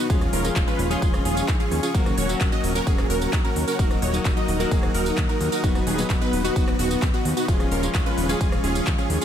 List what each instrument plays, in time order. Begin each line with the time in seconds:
0.09 analog synth bass D#1, clean electric guitar F3 G#3 C#4 F4, supersaw synth C#4 F4 G#4 F5 C#6, synth pluck G#4, kick, closed hi-hat, ride, tambourine
0.21 cross-stick, closed hi-hat, tambourine
0.33 analog synth bass D#1, supersaw synth C#4 F4 A#4, synth pluck A#4, open hi-hat
0.44 clean electric guitar F3 G#3 C#4 F4, closed hi-hat, tambourine
0.56 analog synth bass D#1, kick, clap, closed hi-hat, ride, tambourine
0.68 supersaw synth C#4 F4 B4, synth pluck B4, closed hi-hat, tambourine
0.79 analog synth bass D#1, open hi-hat
0.89 clean electric guitar F3 G#3 C#4 F4, supersaw synth C#4 F4 G#4, synth pluck G#4, closed hi-hat, tambourine
1.02 analog synth bass D#1, supersaw synth C#4 F4 G#4, synth pluck G#4, kick, closed hi-hat, ride, tambourine
1.14 cross-stick, closed hi-hat, tambourine
1.25 analog synth bass D#1, supersaw synth C#4 F4 G#4, synth pluck G#4, open hi-hat
1.37 closed hi-hat, tambourine
1.48 analog synth bass D#2, kick, clap, closed hi-hat, ride, tambourine
1.60 supersaw synth C#4 F4 G#4, synth pluck G#4, closed hi-hat, tambourine
1.71 analog synth bass D#2, open hi-hat
1.83 supersaw synth C#4 F4 G#4, synth pluck G#4, closed hi-hat, tambourine
1.94 analog synth bass D#1, clean electric guitar F#3 A#3 C#4 F#4, supersaw synth C#4 F#4 A#4 F#5, synth pluck A#4, kick, closed hi-hat, ride, tambourine
2.06 cross-stick, closed hi-hat, tambourine
2.18 analog synth bass D#1, supersaw synth C#4 F#4 C#5, synth pluck C#5, open hi-hat
2.28 clean electric guitar F#3 A#3 C#4 F#4, closed hi-hat, tambourine
2.41 analog synth bass D#1, kick, clap, closed hi-hat, ride, tambourine
2.52 supersaw synth C#4 F#4 D#5, synth pluck D#5, closed hi-hat, tambourine
2.64 analog synth bass D#1, open hi-hat
2.74 clean electric guitar F#3 A#3 C#4 F#4, supersaw synth C#4 F#4 A#4, synth pluck A#4, closed hi-hat, tambourine
2.87 analog synth bass D#1, supersaw synth C#4 F#4 G#4, synth pluck G#4, kick, closed hi-hat, ride, tambourine
2.98 cross-stick, clap, closed hi-hat, tambourine
3.10 analog synth bass D#1, supersaw synth C#4 F#4 A#4, synth pluck A#4, open hi-hat
3.21 closed hi-hat, tambourine
3.33 analog synth bass D#2, kick, clap, closed hi-hat, ride, tambourine
3.44 supersaw synth C#4 F#4 A#4, synth pluck A#4, closed hi-hat, tambourine
3.56 analog synth bass D#2, open hi-hat
3.68 supersaw synth C#4 F#4 A#4, synth pluck A#4, closed hi-hat, tambourine
3.79 analog synth bass D#1, clean electric guitar F#3 A#3 D#4 F#4, supersaw synth D#4 F#4 A#4 D#6, synth pluck A#4, kick, closed hi-hat, ride, tambourine
3.91 cross-stick, closed hi-hat, tambourine
4.02 analog synth bass D#1, supersaw synth D#4 F#4 C#5, synth pluck C#5, open hi-hat
4.13 clean electric guitar F#3 A#3 D#4 F#4, closed hi-hat, tambourine
4.25 analog synth bass D#1, kick, clap, closed hi-hat, ride, tambourine
4.37 supersaw synth D#4 F#4 D#5, synth pluck D#5, closed hi-hat, tambourine
4.48 analog synth bass D#1, open hi-hat
4.59 clean electric guitar F#3 A#3 D#4 F#4, supersaw synth D#4 F#4 A#4, synth pluck A#4, closed hi-hat, tambourine
4.71 analog synth bass D#1, supersaw synth D#4 F#4 G#4, synth pluck G#4, kick, closed hi-hat, ride, tambourine
4.83 cross-stick, closed hi-hat, tambourine
4.94 analog synth bass D#1, supersaw synth D#4 F#4 A#4, synth pluck A#4, open hi-hat
5.06 closed hi-hat, tambourine
5.18 analog synth bass D#2, kick, clap, closed hi-hat, ride, tambourine
5.29 supersaw synth D#4 F#4 A#4, synth pluck A#4, closed hi-hat, tambourine
5.41 analog synth bass D#2, open hi-hat
5.52 supersaw synth D#4 F#4 A#4, synth pluck A#4, closed hi-hat, tambourine
5.63 analog synth bass D#1, clean electric guitar F#3 B3 D#4 F#4, supersaw synth B3 D#4 F#4 B4, synth pluck F#4, kick, closed hi-hat, ride, tambourine
5.75 cross-stick, closed hi-hat, tambourine
5.87 analog synth bass D#1, supersaw synth B3 D#4 G#4, synth pluck G#4, open hi-hat
5.98 clean electric guitar F#3 B3 D#4 F#4, closed hi-hat, tambourine
6.10 analog synth bass D#1, kick, clap, closed hi-hat, ride, tambourine
6.21 supersaw synth B3 D#4 B4, synth pluck B4, closed hi-hat, tambourine
6.33 analog synth bass D#1, open hi-hat
6.43 clean electric guitar F#3 B3 D#4 F#4, supersaw synth B3 D#4 F#4, synth pluck F#4, closed hi-hat, tambourine
6.56 analog synth bass D#1, supersaw synth B3 D#4 F#4, synth pluck F#4, kick, closed hi-hat, ride, tambourine
6.68 cross-stick, clap, closed hi-hat, tambourine
6.79 analog synth bass D#1, supersaw synth B3 D#4 F#4, synth pluck F#4, open hi-hat
6.91 closed hi-hat, tambourine
7.02 analog synth bass D#2, kick, clap, closed hi-hat, ride, tambourine
7.14 supersaw synth B3 D#4 F#4, synth pluck F#4, closed hi-hat, tambourine
7.25 analog synth bass D#2, open hi-hat
7.37 supersaw synth B3 D#4 F#4, synth pluck F#4, closed hi-hat, tambourine
7.48 analog synth bass D#1, clean electric guitar F3 G#3 C#4 F4, supersaw synth C#4 F4 G#4 F5 C#6, synth pluck G#4, kick, closed hi-hat, ride, tambourine
7.60 cross-stick, closed hi-hat, tambourine
7.71 analog synth bass D#1, supersaw synth C#4 F4 A#4, synth pluck A#4, open hi-hat
7.82 clean electric guitar F3 G#3 C#4 F4, closed hi-hat, tambourine
7.95 analog synth bass D#1, kick, clap, closed hi-hat, ride, tambourine
8.06 supersaw synth C#4 F4 B4, synth pluck B4, closed hi-hat, tambourine
8.18 analog synth bass D#1, open hi-hat
8.28 clean electric guitar F3 G#3 C#4 F4, supersaw synth C#4 F4 G#4, synth pluck G#4, closed hi-hat, tambourine
8.41 analog synth bass D#1, supersaw synth C#4 F4 G#4, synth pluck G#4, kick, closed hi-hat, ride, tambourine
8.52 cross-stick, closed hi-hat, tambourine
8.64 analog synth bass D#1, supersaw synth C#4 F4 G#4, synth pluck G#4, open hi-hat
8.75 closed hi-hat, tambourine
8.87 analog synth bass D#2, kick, clap, closed hi-hat, ride, tambourine
8.98 supersaw synth C#4 F4 G#4, synth pluck G#4, closed hi-hat, tambourine
9.10 analog synth bass D#2, open hi-hat
9.21 supersaw synth C#4 F4 G#4, synth pluck G#4, closed hi-hat, tambourine